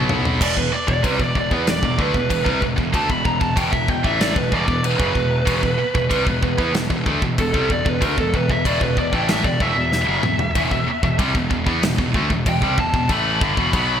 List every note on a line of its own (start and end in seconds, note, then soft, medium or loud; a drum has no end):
0.00 0.37 B1 loud
0.00 0.40 B2 loud
0.00 0.40 F#3 loud
0.00 0.40 B3 loud
0.09 floor tom loud
0.25 floor tom loud
0.41 0.55 E1 medium
0.41 0.55 E2 medium
0.41 0.55 B2 loud
0.41 0.57 D5 medium
0.41 kick loud
0.41 crash loud
0.41 crash medium
0.56 0.71 E1 medium
0.56 0.71 E2 medium
0.56 0.72 B2 medium
0.56 0.72 B4 medium
0.56 kick medium
0.72 0.87 D5 medium
0.72 muted distorted electric guitar stroke medium
0.72 muted picked electric bass stroke soft
0.88 1.03 E1 medium
0.88 1.03 E2 medium
0.88 1.03 B2 medium
0.88 1.03 D5 medium
0.88 kick medium
1.03 1.18 C2 medium
1.03 1.18 C3 medium
1.03 1.18 G3 loud
1.03 1.21 B4 medium
1.03 kick medium
1.03 crash medium
1.19 1.34 E1 medium
1.19 1.34 E2 medium
1.19 1.35 B2 medium
1.19 1.36 D5 medium
1.19 kick medium
1.35 1.50 E1 medium
1.35 1.51 E2 medium
1.35 1.51 B2 medium
1.35 1.52 D5 loud
1.35 kick medium
1.51 1.66 E2 loud
1.51 1.66 E3 medium
1.51 1.66 B3 loud
1.51 1.69 B4 medium
1.51 kick medium
1.67 1.82 E1 medium
1.67 1.82 E2 medium
1.67 1.82 B2 medium
1.67 1.99 D5 medium
1.67 snare loud
1.67 crash medium
1.83 1.97 E1 medium
1.83 1.99 E2 medium
1.83 1.98 B2 medium
1.83 kick medium
1.98 2.13 D2 medium
1.98 2.13 D3 medium
1.98 2.13 A3 loud
1.98 2.61 B4 medium
1.98 kick medium
2.14 2.29 E1 medium
2.14 2.28 E2 medium
2.14 2.28 B2 medium
2.14 kick medium
2.29 2.45 E1 medium
2.29 2.46 E2 medium
2.29 2.44 B2 medium
2.29 kick medium
2.29 crash medium
2.44 2.61 C2 medium
2.44 2.60 C3 medium
2.44 2.61 G3 loud
2.44 kick medium
2.61 2.77 E1 medium
2.61 2.75 E2 medium
2.61 2.75 B2 medium
2.61 kick medium
2.76 2.93 E1 medium
2.76 2.93 E2 medium
2.76 2.92 B2 medium
2.76 kick medium
2.93 3.08 D2 loud
2.93 3.08 D3 medium
2.93 3.08 A3 loud
2.93 3.10 A5 loud
2.93 kick medium
2.93 crash medium
3.09 3.25 E1 medium
3.09 3.24 E2 medium
3.09 3.24 B2 medium
3.09 3.26 B5 medium
3.09 kick medium
3.25 3.40 E1 medium
3.25 3.39 E2 medium
3.25 3.40 B2 medium
3.25 3.40 A#5 medium
3.25 kick medium
3.40 3.56 E1 medium
3.40 3.55 E2 medium
3.40 3.55 B2 medium
3.40 3.56 A5 medium
3.40 kick medium
3.56 3.72 E1 medium
3.56 3.71 E2 loud
3.56 3.71 B2 loud
3.56 3.71 G5 loud
3.56 kick loud
3.56 crash medium
3.71 3.88 E1 medium
3.71 3.87 E2 medium
3.71 3.87 B2 medium
3.71 3.89 E5 medium
3.71 kick medium
3.88 4.03 E1 medium
3.88 4.04 E2 medium
3.88 4.04 B2 medium
3.88 4.05 G5 medium
3.88 kick medium
4.04 4.34 A1 medium
4.04 4.35 A2 medium
4.04 4.35 E3 loud
4.04 4.35 A3 loud
4.04 4.21 E5 medium
4.04 kick medium
4.21 4.36 D5 medium
4.21 snare loud
4.21 crash medium
4.36 4.51 E1 medium
4.36 4.51 E2 medium
4.36 4.52 B2 medium
4.36 4.54 B4 medium
4.36 kick medium
4.52 4.67 E1 medium
4.52 4.67 E2 medium
4.52 4.67 B2 medium
4.52 4.84 D5 loud
4.52 kick medium
4.68 4.98 E1 medium
4.68 4.93 E2 medium
4.68 4.93 B2 medium
4.68 kick medium
4.84 6.71 B4 loud
4.84 crash medium
4.98 5.15 F#1 medium
4.98 5.14 F#2 medium
4.98 5.14 C#3 loud
4.98 kick loud
5.14 5.45 E1 medium
5.14 5.41 E2 medium
5.14 5.41 B2 medium
5.14 kick medium
5.45 5.62 E1 medium
5.45 5.60 E2 medium
5.45 5.61 B2 loud
5.45 kick loud
5.45 crash medium
5.62 5.78 E1 medium
5.62 5.76 E2 medium
5.62 5.79 B2 medium
5.62 kick medium
5.78 muted distorted electric guitar stroke medium
5.78 muted picked electric bass stroke soft
5.95 6.10 E1 medium
5.95 6.11 E2 medium
5.95 6.09 B2 medium
5.95 kick medium
6.10 6.26 C2 medium
6.10 6.25 C3 loud
6.10 6.25 G3 loud
6.10 kick medium
6.10 crash medium
6.26 6.42 E1 medium
6.26 6.41 E2 medium
6.26 6.42 B2 medium
6.26 kick medium
6.43 6.58 E1 medium
6.43 6.59 E2 medium
6.43 6.57 B2 medium
6.43 kick medium
6.58 6.72 E2 medium
6.58 6.73 E3 medium
6.58 6.74 B3 loud
6.58 kick medium
6.73 6.89 E1 medium
6.73 6.89 E2 medium
6.73 6.89 B2 medium
6.73 snare loud
6.73 crash medium
6.90 7.05 E1 medium
6.90 7.06 E2 medium
6.90 7.06 B2 medium
6.90 kick medium
7.06 7.21 D2 medium
7.06 7.21 D3 medium
7.06 7.21 A3 loud
7.06 kick loud
7.22 7.37 E1 medium
7.22 7.37 E2 medium
7.22 7.38 B2 medium
7.22 kick medium
7.38 7.53 E1 medium
7.38 7.54 E2 medium
7.38 7.53 B2 medium
7.38 7.70 A4 loud
7.38 kick medium
7.38 crash medium
7.54 7.69 C2 medium
7.54 7.69 C3 medium
7.54 7.69 G3 medium
7.54 kick medium
7.70 7.85 E1 medium
7.70 7.84 E2 medium
7.70 7.85 B2 medium
7.70 7.89 D5 loud
7.70 kick medium
7.85 8.01 E1 medium
7.85 8.01 E2 medium
7.85 8.00 B2 medium
7.85 8.03 B4 loud
7.85 kick medium
8.01 8.17 D2 loud
8.01 8.16 D3 loud
8.01 8.17 A3 loud
8.01 8.18 A#4 loud
8.01 kick medium
8.01 crash medium
8.18 8.33 E1 medium
8.18 8.34 E2 medium
8.18 8.34 B2 medium
8.18 8.34 A4 loud
8.18 kick medium
8.34 8.49 E1 medium
8.34 8.49 E2 medium
8.34 8.49 B2 medium
8.34 8.50 B4 medium
8.34 kick medium
8.49 8.65 E1 medium
8.49 8.65 E2 medium
8.49 8.66 B2 medium
8.49 8.65 E5 medium
8.49 kick medium
8.65 8.80 E1 medium
8.65 8.80 E2 loud
8.65 8.81 B2 loud
8.65 8.83 D5 medium
8.65 kick medium
8.65 crash medium
8.81 8.96 E1 medium
8.81 8.97 E2 medium
8.81 8.97 B2 medium
8.81 8.98 B4 medium
8.81 kick medium
8.97 9.12 E1 medium
8.97 9.13 E2 medium
8.97 9.13 B2 medium
8.97 9.13 D5 medium
8.97 kick medium
9.13 9.42 A1 medium
9.13 9.44 A2 medium
9.13 9.44 E3 medium
9.13 9.45 A3 medium
9.13 9.31 G5 medium
9.13 kick medium
9.29 9.45 E5 loud
9.29 snare loud
9.29 crash medium
9.44 9.59 E1 medium
9.44 9.59 E2 medium
9.44 9.61 B2 medium
9.44 9.62 D5 medium
9.44 kick medium
9.60 9.75 E1 medium
9.60 9.76 E2 medium
9.60 9.76 B2 loud
9.60 9.92 E5 medium
9.60 kick medium
9.76 10.06 E1 medium
9.76 10.02 E2 medium
9.76 10.02 B2 medium
9.92 11.16 E5 loud
9.92 snare medium
10.07 10.22 F#1 medium
10.07 10.23 F#2 medium
10.07 10.24 C#3 medium
10.23 10.53 E1 medium
10.23 10.50 E2 medium
10.23 10.50 B2 medium
10.23 mid tom medium
10.39 floor tom loud
10.55 10.71 E1 loud
10.55 10.71 E2 loud
10.55 10.72 B2 loud
10.55 kick loud
10.55 crash medium
10.71 10.87 E1 medium
10.71 10.87 E2 medium
10.71 10.88 B2 medium
10.71 kick medium
10.87 muted picked electric bass stroke soft
10.87 muted distorted electric guitar stroke medium
11.03 11.18 E1 medium
11.03 11.20 E2 medium
11.03 11.19 B2 medium
11.03 kick medium
11.19 11.34 C2 medium
11.19 11.34 C3 medium
11.19 11.34 G3 loud
11.19 kick loud
11.19 crash medium
11.35 11.50 E1 medium
11.35 11.49 E2 medium
11.35 11.49 B2 medium
11.35 kick medium
11.50 11.66 E1 medium
11.50 11.67 E2 medium
11.50 11.66 B2 medium
11.50 kick medium
11.66 11.82 E2 medium
11.66 11.82 E3 medium
11.66 11.82 B3 loud
11.66 kick medium
11.83 11.98 E1 medium
11.83 11.97 E2 medium
11.83 11.97 B2 medium
11.83 snare loud
11.83 crash medium
11.98 12.14 E1 medium
11.98 12.14 E2 medium
11.98 12.14 B2 medium
11.98 kick medium
12.14 12.29 D2 medium
12.14 12.30 D3 loud
12.14 12.30 A3 medium
12.14 kick medium
12.30 12.45 E1 medium
12.30 12.46 E2 medium
12.30 12.46 B2 medium
12.30 kick medium
12.46 12.61 E1 medium
12.46 12.63 E2 medium
12.46 12.63 B2 medium
12.46 12.78 G5 loud
12.46 kick medium
12.46 crash medium
12.62 12.77 C2 medium
12.62 12.78 C3 medium
12.62 12.78 G3 loud
12.62 kick medium
12.78 12.93 E1 medium
12.78 12.93 E2 medium
12.78 12.93 B2 medium
12.78 13.10 A5 loud
12.78 kick medium
12.94 13.09 E1 medium
12.94 13.10 E2 medium
12.94 13.09 B2 medium
12.94 kick medium
13.09 13.39 A1 loud
13.09 13.40 A2 loud
13.09 13.41 E3 loud
13.09 13.41 A3 loud
13.09 14.00 B5 loud
13.09 kick medium
13.09 crash medium
13.41 13.56 G1 medium
13.41 13.57 G2 medium
13.41 13.57 D3 loud
13.41 kick loud
13.57 13.72 E1 loud
13.57 13.73 E2 medium
13.57 13.72 B2 medium
13.57 kick medium
13.73 14.00 B1 medium
13.73 14.00 B2 medium
13.73 14.00 F#3 loud
13.73 14.00 B3 loud
13.73 kick loud
13.73 crash medium